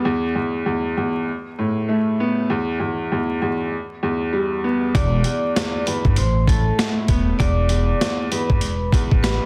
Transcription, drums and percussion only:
4.95 kick loud
4.95 closed hi-hat medium
5.24 closed hi-hat medium
5.56 snare loud
5.56 closed hi-hat loud
5.87 closed hi-hat medium
6.05 kick medium
6.16 closed hi-hat loud
6.48 kick medium
6.48 closed hi-hat medium
6.79 snare loud
6.79 closed hi-hat medium
7.08 kick medium
7.08 closed hi-hat medium
7.40 kick loud
7.40 closed hi-hat medium
7.69 closed hi-hat medium
8.01 snare loud
8.01 closed hi-hat medium
8.32 closed hi-hat medium
8.50 kick medium
8.61 closed hi-hat loud
8.92 kick medium
8.92 closed hi-hat medium
9.11 kick loud
9.24 snare loud
9.24 closed hi-hat medium

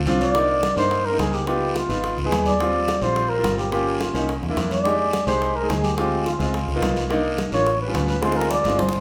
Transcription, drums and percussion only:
0.06 cowbell medium
0.06 high conga medium
0.06 short guiro medium
0.21 cowbell medium
0.21 high conga medium
0.21 short guiro medium
0.34 high bongo medium
0.34 high conga soft
0.34 long guiro medium
0.49 high conga soft
0.63 high bongo medium
0.63 high conga medium
0.63 short guiro medium
0.77 short guiro medium
0.91 high bongo medium
0.91 high conga soft
0.91 long guiro medium
1.05 high conga soft
1.19 high bongo medium
1.19 low bongo medium
1.19 high conga medium
1.19 short guiro medium
1.33 short guiro medium
1.47 high bongo medium
1.47 high conga soft
1.47 long guiro medium
1.62 high conga soft
1.76 high bongo medium
1.76 high conga medium
1.76 short guiro medium
1.90 high bongo soft
1.90 high conga soft
1.90 short guiro medium
2.04 high bongo medium
2.04 high conga soft
2.04 long guiro medium
2.18 high bongo soft
2.18 high conga soft
2.32 high bongo medium
2.32 low bongo medium
2.32 high conga medium
2.32 short guiro medium
2.46 high bongo soft
2.46 high conga medium
2.46 short guiro medium
2.59 high bongo medium
2.59 long guiro medium
2.74 high conga soft
2.88 high bongo medium
2.88 high conga medium
2.88 short guiro medium
3.02 high conga soft
3.02 short guiro medium
3.16 high bongo medium
3.16 high conga soft
3.16 long guiro medium
3.30 high conga soft
3.44 high bongo medium
3.44 low bongo medium
3.44 high conga medium
3.44 short guiro medium
3.58 short guiro medium
3.72 high bongo medium
3.72 long guiro medium
3.87 high conga soft
4.00 high bongo medium
4.00 high conga medium
4.00 short guiro medium
4.15 high bongo soft
4.15 high conga soft
4.15 short guiro medium
4.28 high bongo medium
4.28 high conga soft
4.28 long guiro medium
4.43 high bongo soft
4.57 high bongo medium
4.57 low bongo medium
4.57 high conga medium
4.57 short guiro medium
4.71 high bongo soft
4.71 high conga medium
4.71 short guiro medium
4.85 high bongo medium
4.85 high conga soft
4.85 long guiro medium
5.00 high conga soft
5.13 high bongo medium
5.13 high conga medium
5.13 short guiro medium
5.27 high conga soft
5.27 short guiro medium
5.42 high bongo medium
5.42 high conga soft
5.42 long guiro medium
5.56 high conga soft
5.69 high bongo medium
5.69 low bongo medium
5.69 high conga medium
5.69 short guiro medium
5.84 high conga medium
5.84 short guiro medium
5.98 high bongo medium
5.98 high conga soft
5.98 long guiro medium
6.12 high conga soft
6.26 high bongo medium
6.26 high conga medium
6.26 short guiro medium
6.40 high bongo soft
6.40 high conga soft
6.40 short guiro medium
6.54 high bongo medium
6.54 high conga soft
6.54 long guiro medium
6.69 high bongo soft
6.82 high bongo medium
6.82 low bongo medium
6.82 high conga medium
6.82 short guiro medium
6.96 high bongo soft
6.96 high conga medium
6.96 short guiro medium
7.10 high bongo medium
7.10 high conga soft
7.10 long guiro medium
7.25 high conga soft
7.38 high bongo medium
7.38 high conga medium
7.38 short guiro medium
7.52 high conga soft
7.52 short guiro medium
7.66 high bongo medium
7.66 long guiro medium
7.81 high conga soft
7.94 high bongo medium
7.94 low bongo medium
7.94 high conga medium
7.94 short guiro medium
8.08 short guiro medium
8.22 high bongo loud
8.22 high conga soft
8.22 long guiro medium
8.32 high bongo medium
8.37 high conga soft
8.41 high bongo medium
8.51 high bongo medium
8.51 high conga medium
8.51 short guiro medium
8.64 high conga medium
8.64 short guiro medium
8.70 low bongo medium
8.78 low bongo medium
8.78 high conga loud
8.78 long guiro medium
8.89 low bongo medium
8.93 low conga medium

